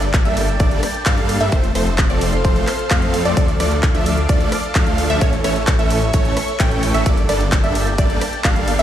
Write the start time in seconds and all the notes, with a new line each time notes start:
Already playing: G1 D5 G5 A5
0.02 closed hi-hat
0.14 kick, clap, closed hi-hat
0.25 G1 G3 A#3 D4 A4 E5, closed hi-hat
0.37 open hi-hat, ride
0.48 closed hi-hat
0.60 G1 G3 A#3 D4 A4 D5, kick, closed hi-hat
0.71 closed hi-hat
0.83 cross-stick, open hi-hat, ride
0.94 closed hi-hat
1.06 G2 G3 A#3 D4 A4 F5, kick, clap, closed hi-hat
1.17 closed hi-hat
1.29 open hi-hat, ride
1.41 G2 G3 A#3 D4 A4 E5, closed hi-hat
1.52 F1 F3 A3 C4 A4 C5 F5 C6, kick, closed hi-hat
1.64 closed hi-hat
1.75 F1 F3 A3 C4 A4 C5, cross-stick, open hi-hat, ride
1.87 closed hi-hat
1.98 kick, clap, closed hi-hat
2.10 F1 F3 A3 C4 A4 D5, closed hi-hat
2.21 open hi-hat, ride
2.33 closed hi-hat
2.44 F1 F3 A3 C4 A4 C5, kick, closed hi-hat
2.56 closed hi-hat
2.67 cross-stick, clap, open hi-hat, ride
2.79 closed hi-hat
2.90 F2 F3 A3 C4 A4 F5, kick, clap, closed hi-hat
3.02 closed hi-hat
3.14 open hi-hat, ride
3.25 F2 F3 A3 C4 A4 D5, closed hi-hat
3.37 D2 F3 A3 D4 A4 D5 F5 D6, kick, closed hi-hat
3.48 closed hi-hat
3.60 D2 F3 A3 D4 A4 D5, cross-stick, open hi-hat, ride
3.71 closed hi-hat
3.83 kick, clap, closed hi-hat
3.95 D2 F3 A3 D4 A4 E5, closed hi-hat
4.06 open hi-hat, ride
4.18 closed hi-hat
4.29 D2 F3 A3 D4 A4 D5, kick, closed hi-hat
4.41 closed hi-hat
4.52 cross-stick, open hi-hat, ride
4.64 closed hi-hat
4.75 D2 F3 A3 D4 A4 F5, kick, clap, closed hi-hat
4.87 closed hi-hat
4.98 open hi-hat, ride
5.10 D2 F3 A3 D4 A4 E5, closed hi-hat
5.21 A1 E3 A3 C#4 C#5 E5 C#6, kick, closed hi-hat
5.33 closed hi-hat
5.44 A1 E3 A3 C#4 A4 C#5, cross-stick, open hi-hat, ride
5.56 closed hi-hat
5.67 kick, clap, closed hi-hat
5.79 A1 E3 A3 C#4 A4 E5, closed hi-hat
5.90 open hi-hat, ride
6.02 closed hi-hat
6.13 A1 E3 A3 C#4 A4 C#5, kick, closed hi-hat
6.25 closed hi-hat
6.37 cross-stick, open hi-hat, ride
6.48 closed hi-hat
6.60 A1 E3 A3 C#4 A4 G5, kick, clap, closed hi-hat
6.71 closed hi-hat
6.83 open hi-hat, ride
6.94 A1 E3 A3 C#4 A4 E5, closed hi-hat
7.06 G1 G3 A#3 D4 A4 D5 G5 A5, kick, closed hi-hat
7.17 closed hi-hat
7.29 G1 G3 A#3 D4 A4 D5, cross-stick, open hi-hat, ride
7.41 closed hi-hat
7.52 kick, clap, closed hi-hat
7.64 G1 G3 A#3 D4 A4 E5, closed hi-hat
7.75 open hi-hat, ride
7.87 closed hi-hat
7.98 G1 G3 A#3 D4 A4 D5, kick, closed hi-hat
8.10 closed hi-hat
8.21 cross-stick, open hi-hat, ride
8.33 closed hi-hat
8.44 G1 G3 A#3 D4 A4 F5, kick, clap, closed hi-hat
8.56 closed hi-hat
8.68 open hi-hat, ride
8.79 G1 G3 A#3 D4 A4 E5, closed hi-hat